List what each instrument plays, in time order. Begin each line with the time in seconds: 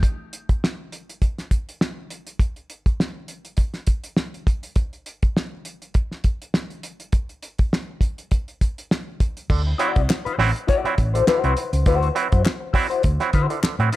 0.03 kick, closed hi-hat
0.33 closed hi-hat
0.49 kick, closed hi-hat
0.64 snare
0.92 closed hi-hat
1.09 closed hi-hat
1.22 kick, closed hi-hat
1.38 snare, closed hi-hat
1.51 kick, closed hi-hat
1.69 closed hi-hat
1.81 snare
2.10 closed hi-hat
2.27 closed hi-hat
2.39 kick, closed hi-hat
2.56 closed hi-hat
2.70 closed hi-hat
2.86 kick, closed hi-hat
3.00 snare
3.28 closed hi-hat
3.45 closed hi-hat
3.57 kick, closed hi-hat
3.74 snare, closed hi-hat
3.87 kick, closed hi-hat
4.04 closed hi-hat
4.17 snare
4.34 closed hi-hat
4.47 kick, closed hi-hat
4.63 closed hi-hat
4.76 kick, closed hi-hat
4.93 closed hi-hat
5.06 closed hi-hat
5.23 kick, closed hi-hat
5.37 snare
5.65 closed hi-hat
5.82 closed hi-hat
5.94 kick, closed hi-hat
6.11 snare
6.24 kick, closed hi-hat
6.42 closed hi-hat
6.54 snare
6.70 closed hi-hat
6.83 closed hi-hat
7.00 closed hi-hat
7.12 kick, closed hi-hat
7.29 closed hi-hat
7.43 closed hi-hat
7.59 kick, closed hi-hat
7.73 snare
8.01 kick, closed hi-hat
8.18 closed hi-hat
8.31 kick, closed hi-hat
8.48 closed hi-hat
8.61 kick, closed hi-hat
8.78 closed hi-hat
8.91 snare
9.20 kick, closed hi-hat
9.37 closed hi-hat
9.50 fingered electric bass D2, clav D3, kick, crash
9.67 clav C4 E4
9.78 clav F#3 C4 E4, clean electric guitar E4 F#4 D5, closed hi-hat
9.96 fingered electric bass C2, kick, closed hi-hat
10.08 muted clean electric guitar stroke, snare, clap
10.25 clean electric guitar E4 F#4 C5, muted fingered electric bass stroke, closed hi-hat
10.38 fingered electric bass A1, clav F#3 C4 E4, muted clean electric guitar stroke, snare, open hi-hat
10.55 muted clean electric guitar stroke, closed hi-hat
10.67 clean electric guitar E4 F#4 D5, kick, closed hi-hat
10.84 clav F#3 C4 E4, muted fingered electric bass stroke, closed hi-hat
10.98 fingered electric bass A1, muted clean electric guitar stroke, kick, closed hi-hat
11.14 clav D3, clean electric guitar E4 F#4 C5, closed hi-hat
11.27 clav D3, clean electric guitar D#4 F4 B4, muted fingered electric bass stroke, snare, clap
11.38 clean electric guitar E4 F#4 C5
11.44 fingered electric bass C2, clav F#3 C4 E4, closed hi-hat
11.57 clav C4 E4, muted clean electric guitar stroke, closed hi-hat
11.73 fingered electric bass C#2, muted clean electric guitar stroke, closed hi-hat
11.86 fingered electric bass D2, clav D3, clean electric guitar E4 F#4 C5, kick, closed hi-hat
12.03 clav C4 E4, closed hi-hat
12.15 clav F#3 C4 E4, muted clean electric guitar stroke, closed hi-hat
12.32 fingered electric bass F#2, clean electric guitar E4 F#4 C5, kick, closed hi-hat
12.44 muted clean electric guitar stroke, snare, clap
12.61 muted clean electric guitar stroke
12.73 clav F#3 C4 E4, clean electric guitar E4 F#4 D5, kick, open hi-hat
12.90 clean electric guitar E4 F#4 C5, closed hi-hat
13.03 fingered electric bass D2, kick, closed hi-hat
13.20 clav F#3 C4 E4, muted clean electric guitar stroke, snare, closed hi-hat
13.33 fingered electric bass D3, clean electric guitar E4 F#4 C5, kick, closed hi-hat
13.49 clav D3, muted clean electric guitar stroke, closed hi-hat
13.63 clav D3, muted fingered electric bass stroke, snare, clap
13.79 fingered electric bass A2, clav F#3 C4 E4, muted clean electric guitar stroke, closed hi-hat
13.92 clav C4, clean electric guitar E4, closed hi-hat